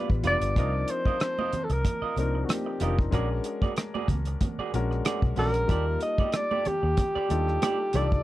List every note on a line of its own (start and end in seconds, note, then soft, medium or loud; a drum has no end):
0.00 0.23 G3 medium
0.00 0.24 B3 medium
0.00 0.25 D4 medium
0.00 0.25 F4 medium
0.00 0.25 B4 medium
0.10 0.22 A1 medium
0.10 muted clean electric guitar stroke soft
0.10 kick medium
0.23 0.38 F1 medium
0.23 0.53 G3 medium
0.23 0.53 B3 medium
0.23 0.53 D4 medium
0.23 0.36 F4 soft
0.23 0.53 F4 soft
0.23 0.36 B4 soft
0.23 0.54 B4 medium
0.23 0.37 D5 soft
0.23 0.92 D5 medium
0.23 closed hi-hat medium
0.23 muted conga soft
0.23 low conga medium
0.41 0.58 G1 medium
0.41 muted clean electric guitar stroke soft
0.41 closed hi-hat medium
0.56 0.83 C2 medium
0.56 1.71 F3 medium
0.56 1.72 C4 medium
0.56 1.72 D4 medium
0.56 1.72 D#4 soft
0.56 0.71 F4 medium
0.56 0.72 A#4 medium
0.56 1.73 A#4 medium
0.56 0.72 D#5 medium
0.56 kick medium
0.56 closed hi-hat medium
0.56 muted conga soft
0.75 muted clean electric guitar stroke soft
0.88 1.65 C5 medium
0.88 muted clean electric guitar stroke soft
0.88 closed hi-hat medium
0.88 muted conga soft
1.06 1.17 F4 soft
1.06 1.16 A#4 soft
1.06 1.16 D#5 soft
1.06 kick medium
1.06 high conga medium
1.20 muted clean electric guitar stroke soft
1.20 cross-stick loud
1.20 closed hi-hat medium
1.20 muted conga soft
1.39 1.52 F4 soft
1.39 1.52 A#4 medium
1.39 1.51 D#5 medium
1.39 high conga medium
1.53 muted fingered electric bass stroke soft
1.53 muted clean electric guitar stroke soft
1.53 closed hi-hat soft
1.53 muted conga soft
1.53 low conga medium
1.64 1.73 A4 medium
1.70 1.82 C2 medium
1.70 2.18 A#4 medium
1.70 muted clean electric guitar stroke soft
1.70 closed hi-hat soft
1.85 muted clean electric guitar stroke soft
1.85 kick medium
1.85 closed hi-hat medium
1.85 high conga medium
1.85 low conga medium
2.02 2.16 F4 medium
2.02 2.15 A#4 medium
2.02 2.15 D#5 medium
2.02 muted fingered electric bass stroke soft
2.16 2.43 C2 medium
2.16 2.74 F3 medium
2.16 2.75 C4 medium
2.16 2.75 D4 medium
2.16 2.75 D#4 medium
2.16 2.75 A#4 medium
2.16 2.46 A#4 medium
2.16 muted clean electric guitar stroke soft
2.16 closed hi-hat medium
2.16 muted conga soft
2.16 high conga soft
2.35 muted clean electric guitar stroke soft
2.44 2.53 F#4 soft
2.49 2.99 G4 medium
2.49 cross-stick medium
2.49 closed hi-hat medium
2.49 high conga medium
2.66 muted clean electric guitar stroke soft
2.80 3.07 F1 medium
2.80 3.09 F3 medium
2.80 3.10 C4 soft
2.80 3.10 D4 soft
2.80 3.10 D#4 medium
2.80 2.96 F4 medium
2.80 2.96 A#4 medium
2.80 3.11 A#4 medium
2.80 2.97 D#5 medium
2.80 cross-stick soft
2.80 closed hi-hat medium
2.80 muted conga soft
2.80 low conga medium
2.99 kick medium
3.11 3.39 A#1 medium
3.11 4.27 G#3 medium
3.11 4.27 C#4 medium
3.11 4.27 D4 medium
3.11 4.28 F#4 medium
3.11 3.28 F#4 medium
3.11 3.28 G#4 medium
3.11 4.28 A#4 medium
3.11 3.29 D5 medium
3.11 kick medium
3.11 closed hi-hat medium
3.11 muted conga soft
3.31 muted clean electric guitar stroke soft
3.44 muted clean electric guitar stroke soft
3.44 closed hi-hat medium
3.62 3.73 F#4 soft
3.62 3.73 G#4 soft
3.62 3.72 D5 medium
3.62 kick medium
3.62 high conga medium
3.77 muted clean electric guitar stroke soft
3.77 cross-stick loud
3.77 closed hi-hat medium
3.77 muted conga soft
3.94 4.08 F#4 soft
3.94 4.08 G#4 medium
3.94 4.07 D5 medium
3.94 high conga medium
4.08 4.35 C#2 medium
4.08 muted clean electric guitar stroke soft
4.08 kick medium
4.08 closed hi-hat soft
4.08 muted conga soft
4.08 low conga medium
4.25 muted clean electric guitar stroke soft
4.25 closed hi-hat medium
4.41 muted clean electric guitar stroke soft
4.41 kick medium
4.41 closed hi-hat medium
4.41 muted conga soft
4.41 high conga medium
4.41 low conga medium
4.58 4.72 F#4 medium
4.58 4.72 G#4 medium
4.58 4.71 D5 medium
4.58 muted fingered electric bass stroke soft
4.73 5.00 A#1 medium
4.73 5.31 G#3 medium
4.73 5.31 C#4 medium
4.73 5.31 D4 medium
4.73 5.31 F#4 medium
4.73 5.32 A#4 medium
4.73 muted clean electric guitar stroke soft
4.73 closed hi-hat medium
4.73 high conga soft
4.91 muted clean electric guitar stroke soft
4.91 cross-stick soft
5.05 5.20 F#4 medium
5.05 5.21 G#4 medium
5.05 5.21 D5 medium
5.05 cross-stick loud
5.05 closed hi-hat medium
5.05 muted conga soft
5.05 high conga medium
5.22 5.35 B1 medium
5.22 muted clean electric guitar stroke soft
5.22 kick medium
5.36 5.64 A#1 medium
5.36 5.65 G#3 medium
5.36 5.66 C#4 medium
5.36 5.66 D4 soft
5.36 5.49 F#4 medium
5.36 5.66 F#4 soft
5.36 5.49 G#4 soft
5.36 5.67 A#4 medium
5.36 5.98 A#4 loud
5.36 5.50 D5 medium
5.36 open hi-hat soft
5.36 muted conga soft
5.36 low conga medium
5.54 muted clean electric guitar stroke soft
5.54 closed hi-hat medium
5.68 5.96 D#2 loud
5.68 6.83 G3 medium
5.68 6.83 A#3 medium
5.68 6.84 D#4 medium
5.68 6.84 F4 medium
5.68 5.84 G4 medium
5.68 5.85 A4 medium
5.68 5.85 D5 medium
5.68 6.84 A5 medium
5.68 kick medium
5.68 closed hi-hat medium
5.68 muted conga soft
6.00 6.37 D#5 medium
6.00 muted clean electric guitar stroke soft
6.00 closed hi-hat medium
6.18 6.30 G4 soft
6.18 6.29 A4 soft
6.18 6.29 D5 soft
6.18 kick medium
6.18 high conga medium
6.32 6.69 D5 loud
6.32 muted clean electric guitar stroke soft
6.32 cross-stick loud
6.32 closed hi-hat medium
6.32 muted conga soft
6.51 6.64 G4 medium
6.51 6.64 A4 soft
6.51 6.64 D5 medium
6.51 high conga medium
6.65 7.98 G4 medium
6.65 muted clean electric guitar stroke soft
6.65 muted fingered electric bass stroke soft
6.65 closed hi-hat medium
6.65 low conga medium
6.83 6.95 D#2 medium
6.83 muted clean electric guitar stroke soft
6.97 muted clean electric guitar stroke soft
6.97 kick medium
6.97 closed hi-hat medium
6.97 high conga medium
6.97 low conga medium
7.15 7.29 G4 medium
7.15 7.28 A4 medium
7.15 7.28 D5 medium
7.15 muted fingered electric bass stroke soft
7.28 7.56 D#2 medium
7.28 7.87 G3 medium
7.28 7.87 D4 medium
7.28 7.88 D#4 medium
7.28 7.88 F4 medium
7.28 7.88 A4 medium
7.28 muted clean electric guitar stroke soft
7.28 closed hi-hat medium
7.28 high conga soft
7.47 muted clean electric guitar stroke soft
7.47 cross-stick soft
7.62 7.77 G4 medium
7.62 7.78 A4 medium
7.62 7.78 D5 medium
7.62 cross-stick medium
7.62 closed hi-hat medium
7.62 muted conga soft
7.62 high conga medium
7.80 muted clean electric guitar stroke soft
7.93 8.20 C2 medium
7.93 8.23 G3 medium
7.93 8.23 D4 soft
7.93 8.23 D#4 soft
7.93 8.23 F4 soft
7.93 8.06 G4 soft
7.93 8.06 A4 soft
7.93 8.23 A4 medium
7.93 8.23 D5 medium
7.93 8.07 D5 medium
7.93 closed hi-hat medium
7.93 muted conga soft
7.93 low conga medium
8.12 muted clean electric guitar stroke soft
8.12 kick medium